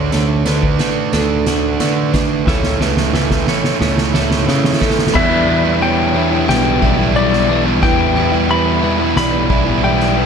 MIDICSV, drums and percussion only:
0, 0, Header, 1, 2, 480
1, 0, Start_track
1, 0, Tempo, 669643
1, 1776, Time_signature, 4, 2, 24, 8
1, 7354, End_track
2, 0, Start_track
2, 0, Title_t, "Drums"
2, 88, Note_on_c, 9, 38, 81
2, 88, Note_on_c, 9, 42, 58
2, 160, Note_off_c, 9, 38, 0
2, 160, Note_off_c, 9, 42, 0
2, 328, Note_on_c, 9, 38, 78
2, 328, Note_on_c, 9, 42, 75
2, 399, Note_off_c, 9, 38, 0
2, 399, Note_off_c, 9, 42, 0
2, 452, Note_on_c, 9, 36, 80
2, 523, Note_off_c, 9, 36, 0
2, 569, Note_on_c, 9, 38, 90
2, 569, Note_on_c, 9, 42, 70
2, 640, Note_off_c, 9, 38, 0
2, 640, Note_off_c, 9, 42, 0
2, 809, Note_on_c, 9, 38, 77
2, 809, Note_on_c, 9, 42, 76
2, 881, Note_off_c, 9, 38, 0
2, 881, Note_off_c, 9, 42, 0
2, 1051, Note_on_c, 9, 38, 83
2, 1051, Note_on_c, 9, 42, 68
2, 1122, Note_off_c, 9, 38, 0
2, 1122, Note_off_c, 9, 42, 0
2, 1292, Note_on_c, 9, 38, 86
2, 1292, Note_on_c, 9, 42, 87
2, 1363, Note_off_c, 9, 38, 0
2, 1363, Note_off_c, 9, 42, 0
2, 1532, Note_on_c, 9, 38, 94
2, 1532, Note_on_c, 9, 42, 70
2, 1534, Note_on_c, 9, 36, 86
2, 1604, Note_off_c, 9, 38, 0
2, 1604, Note_off_c, 9, 42, 0
2, 1605, Note_off_c, 9, 36, 0
2, 1771, Note_on_c, 9, 38, 94
2, 1773, Note_on_c, 9, 36, 116
2, 1843, Note_off_c, 9, 38, 0
2, 1845, Note_off_c, 9, 36, 0
2, 1886, Note_on_c, 9, 38, 87
2, 1958, Note_off_c, 9, 38, 0
2, 2012, Note_on_c, 9, 38, 93
2, 2084, Note_off_c, 9, 38, 0
2, 2128, Note_on_c, 9, 38, 98
2, 2200, Note_off_c, 9, 38, 0
2, 2250, Note_on_c, 9, 38, 100
2, 2322, Note_off_c, 9, 38, 0
2, 2370, Note_on_c, 9, 38, 110
2, 2372, Note_on_c, 9, 36, 77
2, 2441, Note_off_c, 9, 38, 0
2, 2444, Note_off_c, 9, 36, 0
2, 2489, Note_on_c, 9, 38, 107
2, 2561, Note_off_c, 9, 38, 0
2, 2610, Note_on_c, 9, 38, 107
2, 2682, Note_off_c, 9, 38, 0
2, 2729, Note_on_c, 9, 38, 93
2, 2801, Note_off_c, 9, 38, 0
2, 2849, Note_on_c, 9, 38, 95
2, 2921, Note_off_c, 9, 38, 0
2, 2968, Note_on_c, 9, 38, 112
2, 3040, Note_off_c, 9, 38, 0
2, 3089, Note_on_c, 9, 38, 115
2, 3160, Note_off_c, 9, 38, 0
2, 3209, Note_on_c, 9, 38, 104
2, 3281, Note_off_c, 9, 38, 0
2, 3329, Note_on_c, 9, 38, 110
2, 3389, Note_off_c, 9, 38, 0
2, 3389, Note_on_c, 9, 38, 113
2, 3452, Note_off_c, 9, 38, 0
2, 3452, Note_on_c, 9, 38, 116
2, 3453, Note_on_c, 9, 36, 87
2, 3514, Note_off_c, 9, 38, 0
2, 3514, Note_on_c, 9, 38, 105
2, 3524, Note_off_c, 9, 36, 0
2, 3574, Note_off_c, 9, 38, 0
2, 3574, Note_on_c, 9, 38, 116
2, 3632, Note_off_c, 9, 38, 0
2, 3632, Note_on_c, 9, 38, 127
2, 3692, Note_on_c, 9, 49, 115
2, 3692, Note_on_c, 9, 57, 66
2, 3693, Note_on_c, 9, 36, 125
2, 3703, Note_off_c, 9, 38, 0
2, 3764, Note_off_c, 9, 49, 0
2, 3764, Note_off_c, 9, 57, 0
2, 3765, Note_off_c, 9, 36, 0
2, 4172, Note_on_c, 9, 57, 62
2, 4244, Note_off_c, 9, 57, 0
2, 4653, Note_on_c, 9, 38, 99
2, 4653, Note_on_c, 9, 57, 57
2, 4724, Note_off_c, 9, 38, 0
2, 4724, Note_off_c, 9, 57, 0
2, 4891, Note_on_c, 9, 36, 95
2, 4963, Note_off_c, 9, 36, 0
2, 5128, Note_on_c, 9, 57, 68
2, 5200, Note_off_c, 9, 57, 0
2, 5253, Note_on_c, 9, 38, 36
2, 5325, Note_off_c, 9, 38, 0
2, 5612, Note_on_c, 9, 36, 111
2, 5612, Note_on_c, 9, 57, 64
2, 5684, Note_off_c, 9, 36, 0
2, 5684, Note_off_c, 9, 57, 0
2, 6096, Note_on_c, 9, 57, 66
2, 6167, Note_off_c, 9, 57, 0
2, 6568, Note_on_c, 9, 38, 101
2, 6568, Note_on_c, 9, 57, 65
2, 6640, Note_off_c, 9, 38, 0
2, 6640, Note_off_c, 9, 57, 0
2, 6810, Note_on_c, 9, 36, 101
2, 6882, Note_off_c, 9, 36, 0
2, 7045, Note_on_c, 9, 57, 73
2, 7117, Note_off_c, 9, 57, 0
2, 7168, Note_on_c, 9, 38, 33
2, 7239, Note_off_c, 9, 38, 0
2, 7354, End_track
0, 0, End_of_file